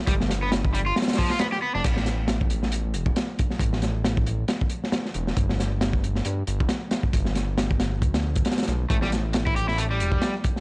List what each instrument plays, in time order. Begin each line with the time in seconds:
0.07 analog synth bass G1, overdriven electric guitar G3, kick, closed hi-hat
0.21 snare
0.30 snare, closed hi-hat
0.42 overdriven electric guitar B3
0.52 snare, closed hi-hat
0.65 kick
0.74 overdriven electric guitar G3, closed hi-hat
0.86 overdriven electric guitar F4
0.96 snare, closed hi-hat
1.02 snare, closed hi-hat
1.08 snare, closed hi-hat
1.13 snare, closed hi-hat
1.18 overdriven electric guitar F3, kick, open hi-hat
1.30 overdriven electric guitar F4, snare
1.39 overdriven electric guitar B3, snare, closed hi-hat
1.52 overdriven electric guitar G4, snare
1.62 overdriven electric guitar B3
1.75 analog synth bass F1, overdriven electric guitar D4
1.84 analog synth bass A1, kick, closed hi-hat, crash
1.97 snare
2.06 snare, closed hi-hat
2.28 snare, closed hi-hat
2.41 kick
2.50 closed hi-hat
2.63 snare
2.72 closed hi-hat
2.94 analog synth bass E1, closed hi-hat
3.06 kick
3.16 snare, closed hi-hat
3.39 kick, closed hi-hat
3.50 snare
3.59 analog synth bass A1, kick, closed hi-hat
3.73 snare
3.82 snare, closed hi-hat
4.04 snare, closed hi-hat
4.17 kick
4.26 closed hi-hat
4.48 snare, closed hi-hat
4.61 kick
4.70 closed hi-hat
4.84 snare
4.92 snare, closed hi-hat
5.06 snare
5.14 analog synth bass E1, closed hi-hat
5.27 snare
5.37 analog synth bass G1, kick, closed hi-hat
5.49 snare
5.60 snare, closed hi-hat
5.81 snare, closed hi-hat
5.93 kick
6.04 closed hi-hat
6.16 snare
6.25 analog synth bass G2, closed hi-hat
6.47 analog synth bass G1, closed hi-hat
6.60 kick
6.69 snare, closed hi-hat
6.91 snare, closed hi-hat
7.03 kick
7.13 analog synth bass G1, kick, closed hi-hat
7.25 snare
7.35 snare, closed hi-hat
7.58 snare, closed hi-hat
7.71 kick
7.80 snare, closed hi-hat
8.02 analog synth bass D2, kick, closed hi-hat
8.14 snare, closed hi-hat
8.35 kick, closed hi-hat
8.45 snare, closed hi-hat
8.51 snare, closed hi-hat
8.58 snare, closed hi-hat
8.63 snare, closed hi-hat
8.68 analog synth bass B1, snare, closed hi-hat
8.90 analog synth bass A1, overdriven electric guitar A3, kick, closed hi-hat
9.02 overdriven electric guitar G3, snare
9.12 snare, closed hi-hat
9.33 snare, closed hi-hat
9.46 overdriven electric guitar E4, kick
9.56 overdriven electric guitar G4, closed hi-hat
9.68 overdriven electric guitar E4, snare
9.78 overdriven electric guitar A3, closed hi-hat
9.91 overdriven electric guitar G3
10.00 analog synth bass E1, closed hi-hat
10.12 kick
10.22 snare, closed hi-hat
10.44 kick, closed hi-hat
10.56 snare